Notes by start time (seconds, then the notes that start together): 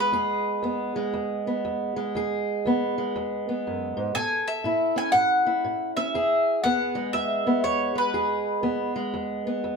Already playing: E3 G#3 B3 G#4
0.00 B4
0.12 E2 G#4
0.63 E2 B3
0.96 G#3
1.14 E2
1.47 B3
1.65 E2
1.96 G#3
2.15 E2 G#4
2.65 E2 B3
2.98 G#3
3.16 E2
3.49 B3
3.67 F#2
3.97 G#2
4.15 A2 A4 G#5
4.48 E5
4.64 A2 E4
4.96 C#4 G#5
5.12 A2 F#5
5.46 E4
5.64 A2
5.97 C#4 E5
6.14 E2 G#4
6.64 E2 B3 F#5
6.95 G#3
7.13 E2 E5
7.47 B3
7.64 E2 C#5
7.95 G#3 B4
8.14 E2 G#4
8.63 E2 B3
8.96 G#3
9.14 E2
9.47 B3
9.64 E2